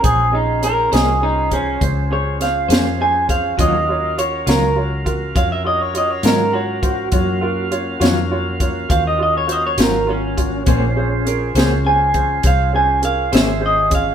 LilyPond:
<<
  \new Staff \with { instrumentName = "Clean electric guitar" } { \time 12/8 \key bes \minor \tempo 4. = 68 aes'8 ees'8 bes'8 aes'8 ees'8 des'8 r8 des''8 f''4 aes''8 f''8 | ees''4 des''8 bes'8 r4 f''16 e''16 ees''16 des''16 ees''16 des''16 bes'8 ges'4~ | ges'4 r2 f''16 ees''16 ees''16 des''16 ees''16 des''16 bes'8 des'4~ | des'4 r4 aes''4 f''8 aes''8 f''8 e''8 ees''8 f''8 | }
  \new Staff \with { instrumentName = "Grand piano" } { \time 12/8 \key bes \minor <des' aes' c''>8 <des' aes' ees''>8 <des' aes' c''>8 <des' aes' ees''>8 <des' aes' c''>8 <des' aes' c''>8 <des' aes' c''>8 <des' aes' c''>8 <des' aes' c''>8 <des' aes' c''>8 <des' aes' c''>8 <des' aes' c''>8 | <f' ges' des''>8 <f' ges' des''>8 <f' ges' des''>8 <f' ges' des''>8 <f' ges' des''>8 <f' ges' bes'>8 <f' ges' des''>8 <f' ges' des''>8 <f' ges' des''>8 <f' ges' ees''>8 <f' ges' des''>8 <f' ges' c''>8 | <f' ges' des''>8 <f' ges' bes'>8 <f' ges' des''>8 <f' ges' des''>8 <f' ges' des''>8 <f' ges' des''>8 <f' ges' c''>8 <f' ges' ees''>8 <f' ges' c''>8 <f' ges' c''>8 <f' ges' des''>8 <f' ges' des''>8 | <des' aes' c''>8 <des' aes' c''>8 <des' aes' bes'>8 <des' aes' c''>8 <des' aes' c''>8 <des' aes' c''>8 <des' aes' c''>8 <des' aes' c''>8 <des' aes' bes'>8 <des' aes' c''>8 <des' aes' c''>8 <des' aes' ees''>8 | }
  \new Staff \with { instrumentName = "Tonewheel organ" } { \time 12/8 \key bes \minor <des' f' aes' c''>1. | <des' ges' bes' f''>1. | <bes des' ges' f''>1. | <des' f' aes' c''>1. | }
  \new Staff \with { instrumentName = "Clean electric guitar" } { \time 12/8 \key bes \minor r4. <bes des' aes' c''>8 r2 r8 <bes des' aes' c''>8 r4 | <ees ges des' f'>8 r4 <ees ges des' f'>8 r2 r8 <ees ges des' f'>8 r4 | r4. <ees ges des' f'>8 r2 r8 <ees ges des' f'>8 r4 | <bes des' aes' c''>8 r4 <bes des' aes' c''>8 r2 r8 <bes des' aes' c''>8 r4 | }
  \new Staff \with { instrumentName = "Fingered electric bass" } { \clef bass \time 12/8 \key bes \minor bes,,4. c,4. des,4. f,4. | ees,4. des,4. f,4. aes,4. | ges,4. f,4. ees,4. aes,,4. | bes,,4. des,4. c,4. aes,,4. | }
  \new DrumStaff \with { instrumentName = "Drums" } \drummode { \time 12/8 <hh bd>4 hh8 <hh sn>4 <hh bd>8 <hh bd>4 <hh sn>8 <hh sn>4 <hh bd>8 | <hh bd>4 hh8 <hh sn>4 <hh bd>8 <hh bd>4 hh8 <hh sn>4 <hh bd>8 | <hh bd>4 hh8 <hh sn>4 <hh bd>8 <hh bd>4 hh8 <hh sn>4 <hh bd>8 | <hh bd>4 hh8 <hh sn>4 <hh bd>8 <hh bd>4 hh8 <hh sn>4 <hh bd>8 | }
>>